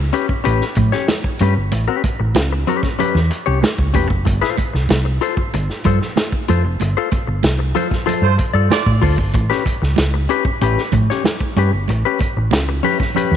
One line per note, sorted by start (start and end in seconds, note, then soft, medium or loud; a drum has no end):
0.13 0.32 C#4 loud
0.13 0.29 G4 medium
0.13 0.27 B4 medium
0.13 closed hi-hat medium
0.28 muted clean electric guitar stroke soft
0.28 kick medium
0.44 0.59 A1 loud
0.44 0.63 C#4 medium
0.44 0.63 G4 medium
0.44 0.64 B4 loud
0.44 closed hi-hat medium
0.61 snare soft
0.75 0.91 A2 loud
0.75 muted clean electric guitar stroke soft
0.75 kick medium
0.75 closed hi-hat medium
0.75 low conga medium
0.92 1.08 C#4 soft
0.92 1.07 G4 medium
0.92 1.07 C#5 medium
0.92 snare soft
1.08 muted clean electric guitar stroke soft
1.08 snare loud
1.08 closed hi-hat medium
1.08 high conga medium
1.24 kick medium
1.39 1.54 G2 loud
1.39 1.55 C#4 medium
1.39 1.55 G4 medium
1.39 1.55 B4 medium
1.39 closed hi-hat medium
1.39 high conga medium
1.57 1.70 G1 medium
1.72 1.86 A1 loud
1.72 muted clean electric guitar stroke soft
1.72 closed hi-hat medium
1.72 muted conga medium
1.88 2.03 C#4 medium
1.88 2.04 G4 medium
1.88 2.04 B4 medium
2.04 muted clean electric guitar stroke soft
2.04 kick medium
2.04 closed hi-hat medium
2.04 muted conga medium
2.20 2.35 A1 medium
2.20 muted clean electric guitar stroke soft
2.35 2.63 C#2 loud
2.35 snare loud
2.35 closed hi-hat loud
2.35 high conga medium
2.52 muted clean electric guitar stroke medium
2.67 2.87 C#4 medium
2.67 2.83 G4 medium
2.67 2.82 B4 medium
2.67 closed hi-hat medium
2.67 low conga medium
2.83 muted clean electric guitar stroke medium
2.83 kick medium
2.83 snare soft
2.99 3.17 C#4 medium
2.99 3.18 G4 medium
2.99 3.18 B4 loud
2.99 closed hi-hat medium
2.99 muted conga soft
2.99 low conga medium
3.15 3.29 E2 loud
3.15 snare soft
3.30 muted clean electric guitar stroke soft
3.30 closed hi-hat medium
3.46 3.61 C2 medium
3.46 3.60 C#4 medium
3.46 3.61 G4 medium
3.46 3.61 C#5 medium
3.61 muted clean electric guitar stroke soft
3.61 snare loud
3.61 closed hi-hat medium
3.61 high conga medium
3.78 3.92 C#2 medium
3.78 kick medium
3.94 4.09 E1 loud
3.94 4.09 C#4 medium
3.94 4.09 G4 medium
3.94 4.09 B4 medium
3.94 kick loud
3.94 closed hi-hat medium
3.94 high conga medium
4.10 4.27 F#1 medium
4.10 kick loud
4.25 4.40 G1 loud
4.25 muted clean electric guitar stroke soft
4.25 kick loud
4.25 closed hi-hat medium
4.25 muted conga medium
4.41 4.57 F4 medium
4.41 4.58 A4 medium
4.41 4.58 C5 medium
4.41 snare soft
4.57 muted clean electric guitar stroke soft
4.57 kick medium
4.57 closed hi-hat medium
4.57 muted conga medium
4.73 4.88 C2 medium
4.73 muted clean electric guitar stroke soft
4.73 snare soft
4.89 5.18 C2 loud
4.89 snare loud
4.89 closed hi-hat loud
4.89 high conga medium
5.05 muted clean electric guitar stroke soft
5.21 5.40 F4 medium
5.21 5.38 A4 medium
5.21 5.36 C5 loud
5.21 closed hi-hat medium
5.37 muted clean electric guitar stroke soft
5.37 kick medium
5.53 5.67 G1 loud
5.53 muted clean electric guitar stroke soft
5.53 closed hi-hat medium
5.53 muted conga soft
5.70 snare soft
5.84 5.99 G2 loud
5.84 6.00 F4 medium
5.84 6.00 A4 medium
5.84 6.00 C5 medium
5.84 kick loud
5.84 closed hi-hat medium
5.84 low conga medium
6.01 muted clean electric guitar stroke soft
6.01 snare soft
6.16 muted clean electric guitar stroke soft
6.16 snare loud
6.16 closed hi-hat loud
6.16 high conga medium
6.32 kick medium
6.48 6.63 F2 loud
6.48 6.63 F4 medium
6.48 6.64 A4 medium
6.48 6.63 C5 medium
6.48 closed hi-hat medium
6.48 high conga medium
6.64 6.78 F1 loud
6.64 muted clean electric guitar stroke soft
6.80 6.94 G1 loud
6.80 muted clean electric guitar stroke soft
6.80 closed hi-hat medium
6.80 muted conga medium
6.97 7.11 F4 medium
6.97 7.11 A4 medium
6.97 7.12 C5 medium
7.12 muted clean electric guitar stroke soft
7.12 kick loud
7.12 closed hi-hat medium
7.12 muted conga medium
7.27 7.42 G1 medium
7.27 muted clean electric guitar stroke soft
7.43 7.71 C2 medium
7.43 snare loud
7.43 closed hi-hat loud
7.43 high conga medium
7.59 muted clean electric guitar stroke soft
7.75 7.94 F4 medium
7.75 7.90 A4 medium
7.75 7.89 C5 loud
7.75 closed hi-hat medium
7.75 low conga medium
7.90 muted clean electric guitar stroke soft
7.90 kick medium
7.90 snare soft
8.06 8.25 F4 medium
8.06 8.26 A4 loud
8.06 8.26 C5 loud
8.06 closed hi-hat medium
8.06 muted conga soft
8.06 low conga medium
8.22 8.36 G2 medium
8.22 8.33 A3 medium
8.22 8.33 F4 medium
8.22 8.34 C5 medium
8.37 muted clean electric guitar stroke soft
8.37 kick medium
8.37 closed hi-hat medium
8.53 8.68 G2 medium
8.53 8.70 F4 medium
8.53 8.69 A4 medium
8.53 8.69 D5 medium
8.70 8.91 A3 medium
8.70 8.90 F4 medium
8.70 8.91 D5 loud
8.70 muted clean electric guitar stroke soft
8.70 snare loud
8.70 closed hi-hat medium
8.70 high conga medium
8.86 9.00 A2 medium
8.86 kick medium
9.02 9.16 D2 loud
9.02 9.17 F4 medium
9.02 9.17 A4 medium
9.02 9.16 C5 medium
9.02 kick loud
9.02 open hi-hat medium
9.02 high conga medium
9.17 9.32 G1 medium
9.17 muted clean electric guitar stroke soft
9.17 kick loud
9.34 9.48 A1 loud
9.34 muted clean electric guitar stroke soft
9.34 kick loud
9.34 closed hi-hat medium
9.34 muted conga medium
9.50 9.65 C#4 medium
9.50 9.65 G4 medium
9.50 9.66 B4 medium
9.50 snare soft
9.65 muted clean electric guitar stroke soft
9.65 kick medium
9.65 closed hi-hat medium
9.65 muted conga soft
9.82 9.96 C#2 medium
9.82 muted clean electric guitar stroke soft
9.82 snare soft
9.96 10.26 C#2 loud
9.96 snare loud
9.96 closed hi-hat loud
9.96 high conga medium
10.14 muted clean electric guitar stroke soft
10.29 10.48 C#4 medium
10.29 10.47 G4 loud
10.29 10.45 B4 loud
10.29 closed hi-hat medium
10.45 muted clean electric guitar stroke medium
10.45 kick loud
10.61 10.75 A1 medium
10.61 10.80 C#4 medium
10.61 10.81 G4 loud
10.61 10.81 B4 loud
10.61 closed hi-hat medium
10.61 muted conga soft
10.78 snare soft
10.92 11.07 A2 loud
10.92 muted clean electric guitar stroke soft
10.92 kick medium
10.92 closed hi-hat medium
10.92 low conga medium
11.10 11.24 C#4 soft
11.10 11.25 G4 medium
11.10 11.24 C#5 medium
11.10 snare soft
11.24 muted clean electric guitar stroke soft
11.24 snare loud
11.24 closed hi-hat medium
11.24 high conga medium
11.41 kick medium
11.56 11.70 G2 medium
11.56 11.72 C#4 medium
11.56 11.72 G4 medium
11.56 11.72 B4 medium
11.56 closed hi-hat medium
11.56 high conga medium
11.73 11.87 G1 medium
11.73 muted clean electric guitar stroke soft
11.88 12.02 A1 loud
11.88 muted clean electric guitar stroke soft
11.88 closed hi-hat medium
11.88 muted conga medium
12.05 12.21 C#4 medium
12.05 12.21 G4 medium
12.05 12.21 B4 medium
12.19 muted clean electric guitar stroke soft
12.19 kick loud
12.19 closed hi-hat medium
12.19 muted conga medium
12.37 12.52 A1 medium
12.37 muted clean electric guitar stroke soft
12.51 12.80 C#2 loud
12.51 snare loud
12.51 closed hi-hat loud
12.51 high conga medium
12.69 muted clean electric guitar stroke medium
12.83 13.02 C#4 loud
12.83 13.00 G4 loud
12.83 12.99 B4 loud
12.83 open hi-hat soft
12.83 low conga medium
13.00 muted clean electric guitar stroke medium
13.00 kick loud
13.00 snare soft
13.15 13.34 C#4 medium
13.15 13.35 G4 medium
13.15 13.35 B4 medium
13.15 closed hi-hat medium
13.15 low conga medium
13.31 13.37 E2 loud
13.31 snare soft